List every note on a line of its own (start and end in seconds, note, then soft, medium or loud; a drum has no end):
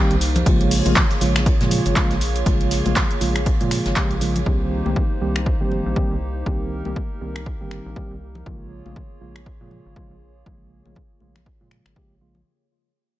0.00 0.14 D#3 medium
0.00 0.14 G3 medium
0.00 0.14 A#3 medium
0.00 8.42 A#3 medium
0.00 0.14 C4 medium
0.00 0.42 D#4 medium
0.00 0.14 G4 loud
0.00 0.42 G4 medium
0.00 0.42 C5 medium
0.11 0.43 C2 medium
0.11 closed hi-hat soft
0.11 shaker soft
0.21 open hi-hat medium
0.21 ride medium
0.21 shaker medium
0.36 closed hi-hat medium
0.36 low conga loud
0.36 shaker soft
0.46 0.82 A#1 loud
0.46 0.82 C#3 medium
0.46 0.82 F3 medium
0.46 0.82 G#3 medium
0.46 0.82 A#3 medium
0.46 4.42 F4 medium
0.46 0.82 F4 medium
0.46 4.42 G#4 medium
0.46 4.42 C#5 medium
0.46 kick loud
0.46 closed hi-hat medium
0.46 ride medium
0.46 shaker soft
0.61 closed hi-hat soft
0.71 open hi-hat medium
0.71 open hi-hat loud
0.71 shaker medium
0.86 0.94 A#1 loud
0.86 1.01 C#3 medium
0.86 1.01 F3 medium
0.86 1.01 G#3 medium
0.86 1.01 A#3 medium
0.86 1.01 F4 medium
0.86 closed hi-hat medium
0.86 ride soft
0.86 high conga medium
0.86 shaker soft
0.95 kick loud
0.95 snare loud
0.95 clap loud
0.95 closed hi-hat medium
0.95 ride medium
0.95 low conga medium
0.95 shaker soft
1.11 snare soft
1.11 closed hi-hat soft
1.11 shaker soft
1.21 1.57 A#1 medium
1.21 1.39 C#3 medium
1.21 1.39 F3 medium
1.21 1.39 G#3 medium
1.21 1.39 A#3 medium
1.21 1.39 F4 medium
1.21 open hi-hat loud
1.21 ride medium
1.21 shaker medium
1.36 finger snap medium
1.36 snare soft
1.36 closed hi-hat medium
1.36 shaker soft
1.46 kick loud
1.46 closed hi-hat medium
1.46 ride medium
1.46 shaker soft
1.61 1.81 A#2 medium
1.61 1.94 C#3 medium
1.61 1.94 F3 medium
1.61 1.94 G#3 medium
1.61 1.94 A#3 medium
1.61 1.94 F4 medium
1.61 snare soft
1.61 closed hi-hat soft
1.61 shaker soft
1.71 open hi-hat loud
1.71 ride medium
1.71 low conga medium
1.71 shaker medium
1.86 1.94 G#1 loud
1.86 closed hi-hat medium
1.86 shaker soft
1.96 2.14 C#3 medium
1.96 2.14 F3 medium
1.96 2.14 G#3 medium
1.96 2.14 A#3 medium
1.96 2.14 F4 loud
1.96 kick loud
1.96 snare loud
1.96 clap loud
1.96 closed hi-hat medium
1.96 ride medium
1.96 shaker soft
2.11 2.43 A#1 medium
2.11 snare medium
2.11 closed hi-hat soft
2.11 shaker soft
2.21 open hi-hat loud
2.21 ride medium
2.21 shaker medium
2.35 closed hi-hat soft
2.35 ride soft
2.35 shaker soft
2.46 2.82 A#1 loud
2.46 2.82 C#3 medium
2.46 2.82 F3 medium
2.46 2.82 G#3 medium
2.46 2.82 A#3 medium
2.46 2.82 F4 medium
2.46 kick loud
2.46 closed hi-hat medium
2.46 ride medium
2.46 shaker soft
2.61 closed hi-hat soft
2.71 snare soft
2.71 open hi-hat loud
2.71 ride medium
2.71 shaker medium
2.85 2.94 A#1 loud
2.85 3.01 C#3 medium
2.85 3.01 F3 medium
2.85 3.01 G#3 medium
2.85 3.01 A#3 medium
2.85 3.01 F4 medium
2.85 closed hi-hat soft
2.85 ride soft
2.85 high conga medium
2.85 shaker soft
2.96 kick loud
2.96 snare loud
2.96 clap loud
2.96 closed hi-hat medium
2.96 ride medium
2.96 low conga medium
2.96 shaker soft
3.11 closed hi-hat soft
3.11 shaker soft
3.21 3.57 A#1 medium
3.21 3.39 C#3 medium
3.21 3.39 F3 medium
3.21 3.39 G#3 medium
3.21 3.39 A#3 medium
3.21 3.39 F4 medium
3.21 open hi-hat loud
3.21 ride medium
3.21 shaker medium
3.36 finger snap medium
3.36 closed hi-hat soft
3.36 shaker soft
3.46 kick loud
3.46 closed hi-hat medium
3.46 ride medium
3.46 shaker soft
3.61 3.81 A#2 medium
3.61 3.94 C#3 medium
3.61 3.94 F3 medium
3.61 3.94 G#3 medium
3.61 3.94 A#3 medium
3.61 3.94 F4 medium
3.61 closed hi-hat soft
3.61 shaker soft
3.71 finger snap medium
3.71 open hi-hat loud
3.71 ride medium
3.71 shaker medium
3.86 3.94 G#1 loud
3.86 snare soft
3.86 closed hi-hat medium
3.86 shaker soft
3.96 4.14 C#3 medium
3.96 4.14 F3 medium
3.96 4.14 G#3 medium
3.96 4.14 A#3 medium
3.96 4.14 G4 medium
3.96 kick loud
3.96 snare loud
3.96 clap loud
3.96 closed hi-hat medium
3.96 ride medium
3.96 shaker soft
4.11 4.43 A#1 medium
4.11 closed hi-hat soft
4.11 shaker soft
4.21 4.39 C#3 medium
4.21 4.39 F3 medium
4.21 4.39 G#3 medium
4.21 4.39 A#3 medium
4.21 4.39 F4 medium
4.21 open hi-hat medium
4.21 ride medium
4.21 shaker medium
4.36 closed hi-hat soft
4.36 low conga medium
4.36 shaker soft
4.46 4.82 C2 loud
4.46 4.82 D#3 medium
4.46 4.82 G3 medium
4.46 4.82 A#3 medium
4.46 4.82 C4 medium
4.46 8.42 D#4 medium
4.46 8.42 G4 medium
4.46 4.82 G4 medium
4.46 6.44 C5 medium
4.46 kick loud
4.86 4.94 C2 loud
4.86 5.01 D#3 medium
4.86 5.01 G3 medium
4.86 5.01 A#3 medium
4.86 5.01 C4 medium
4.86 5.01 G4 medium
4.86 high conga medium
4.96 kick loud
4.96 low conga medium
5.21 5.57 C2 medium
5.21 5.39 D#3 medium
5.21 5.39 G3 medium
5.21 5.39 A#3 medium
5.21 5.39 C4 medium
5.21 5.39 G4 medium
5.36 finger snap medium
5.46 kick loud
5.61 5.81 G1 medium
5.61 5.94 D#3 medium
5.61 5.94 G3 medium
5.61 5.94 A#3 medium
5.61 5.94 C4 medium
5.61 5.94 G4 medium
5.72 low conga medium
5.86 5.94 A#1 loud
5.96 6.14 D#3 medium
5.96 6.14 G3 medium
5.96 6.14 A#3 medium
5.96 6.14 C4 medium
5.96 6.14 G4 loud
5.96 kick loud
6.11 6.43 C2 medium
6.46 6.82 C2 loud
6.46 6.82 D#3 medium
6.46 6.82 G3 medium
6.46 6.82 A#3 medium
6.46 6.82 C4 medium
6.46 6.82 G4 medium
6.46 8.44 A#4 medium
6.46 kick loud
6.85 6.94 C2 loud
6.85 7.01 D#3 medium
6.85 7.01 G3 medium
6.85 7.01 A#3 medium
6.85 7.01 C4 medium
6.85 7.01 G4 medium
6.85 high conga medium
6.96 kick loud
7.21 7.57 C2 medium
7.21 7.39 D#3 medium
7.21 7.39 G3 medium
7.21 7.39 A#3 medium
7.21 7.39 C4 medium
7.21 7.39 G4 medium
7.36 finger snap medium
7.46 kick loud
7.61 7.81 G1 medium
7.61 7.94 D#3 medium
7.61 7.94 G3 medium
7.61 7.94 A#3 medium
7.61 7.94 C4 medium
7.61 7.94 G4 medium
7.71 finger snap medium
7.86 7.94 A#1 loud
7.96 8.14 D#3 medium
7.96 8.14 G3 medium
7.96 8.14 A#3 medium
7.96 8.14 C4 medium
7.96 8.14 G4 loud
7.96 kick loud
8.11 8.43 C2 medium
8.35 low conga medium
8.46 8.82 A#1 loud
8.46 8.82 C#3 medium
8.46 8.82 F3 medium
8.46 8.82 G#3 medium
8.46 12.42 A#3 medium
8.46 8.82 A#3 medium
8.46 12.42 F4 medium
8.46 8.82 F4 medium
8.46 12.42 G#4 medium
8.46 12.42 C#5 medium
8.46 kick loud
8.86 8.94 A#1 loud
8.86 9.01 C#3 medium
8.86 9.01 F3 medium
8.86 9.01 G#3 medium
8.86 9.01 A#3 medium
8.86 9.01 F4 medium
8.86 high conga medium
8.96 kick loud
8.96 low conga medium
9.21 9.57 A#1 medium
9.21 9.39 C#3 medium
9.21 9.39 F3 medium
9.21 9.39 G#3 medium
9.21 9.39 A#3 medium
9.21 9.39 F4 medium
9.36 finger snap medium
9.46 kick loud
9.61 9.81 A#2 medium
9.61 9.94 C#3 medium
9.61 9.94 F3 medium
9.61 9.94 G#3 medium
9.61 9.94 A#3 medium
9.61 9.94 F4 medium
9.71 low conga medium
9.86 9.94 G#1 loud
9.96 10.14 C#3 medium
9.96 10.14 F3 medium
9.96 10.14 G#3 medium
9.96 10.14 A#3 medium
9.96 10.14 F4 loud
9.96 kick loud
10.11 10.43 A#1 medium
10.46 10.82 A#1 loud
10.46 10.82 C#3 medium
10.46 10.82 F3 medium
10.46 10.82 G#3 medium
10.46 10.82 A#3 medium
10.46 10.82 F4 medium
10.46 kick loud
10.86 10.94 A#1 loud
10.86 11.01 C#3 medium
10.86 11.01 F3 medium
10.86 11.01 G#3 medium
10.86 11.01 A#3 medium
10.86 11.01 F4 medium
10.86 high conga medium
10.95 kick loud
10.95 low conga medium
11.20 11.57 A#1 medium
11.20 11.39 C#3 medium
11.20 11.39 F3 medium
11.20 11.39 G#3 medium
11.20 11.39 A#3 medium
11.20 11.39 F4 medium
11.20 high conga medium
11.36 finger snap medium
11.36 low conga medium
11.46 kick loud
11.61 11.81 A#2 medium
11.61 11.94 C#3 medium
11.61 11.94 F3 medium
11.61 11.94 G#3 medium
11.61 11.94 A#3 medium
11.61 11.94 F4 medium
11.71 finger snap medium
11.86 11.94 G#1 loud
11.86 finger snap medium
11.96 12.14 C#3 medium
11.96 12.14 F3 medium
11.96 12.14 G#3 medium
11.96 12.14 A#3 medium
11.96 12.14 G4 medium
11.96 kick loud
12.11 12.43 A#1 medium
12.21 12.39 C#3 medium
12.21 12.39 F3 medium
12.21 12.39 G#3 medium
12.21 12.39 A#3 medium
12.21 12.39 F4 medium
12.35 low conga medium